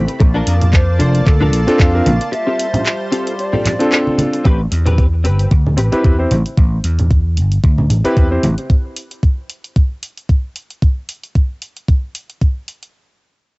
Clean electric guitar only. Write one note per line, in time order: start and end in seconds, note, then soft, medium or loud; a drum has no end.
0.08 muted clean electric guitar stroke soft
0.20 muted clean electric guitar stroke loud
0.34 0.54 D4 medium
0.34 0.54 F4 medium
0.34 0.54 A4 medium
0.34 0.55 A#4 loud
0.73 muted clean electric guitar stroke soft
0.99 1.20 D4 medium
0.99 1.21 F4 medium
0.99 1.21 A4 medium
0.99 1.21 C5 loud
1.41 1.60 D4 loud
1.41 1.60 F4 loud
1.41 1.61 A4 loud
1.41 1.61 A#4 loud
1.79 muted clean electric guitar stroke medium
1.93 muted clean electric guitar stroke soft
2.05 muted clean electric guitar stroke soft
2.20 muted clean electric guitar stroke soft
2.32 muted clean electric guitar stroke loud
2.47 2.66 C4 medium
2.47 2.66 F4 medium
2.47 2.67 G4 medium
2.47 2.67 A4 loud
2.85 muted clean electric guitar stroke soft
3.12 3.33 C4 medium
3.12 3.33 F4 medium
3.12 3.33 G4 medium
3.12 3.33 A4 loud
3.53 3.72 C4 loud
3.53 3.73 F4 loud
3.53 3.73 G4 loud
3.53 3.73 A4 loud
3.92 muted clean electric guitar stroke medium
4.06 muted clean electric guitar stroke soft
4.18 muted clean electric guitar stroke soft
4.33 muted clean electric guitar stroke soft
4.45 4.59 C4 loud
4.45 4.60 G4 loud
4.45 4.60 B4 loud
4.71 muted clean electric guitar stroke soft
4.86 5.05 C4 medium
4.86 5.06 G4 medium
4.86 5.06 B4 loud
5.24 5.51 C4 medium
5.24 5.51 G4 medium
5.24 5.52 B4 loud
5.77 5.92 C4 loud
5.77 5.93 G4 loud
5.77 5.93 B4 loud
6.04 6.19 C4 medium
6.04 6.19 G4 medium
6.04 6.20 B4 loud
6.30 muted clean electric guitar stroke soft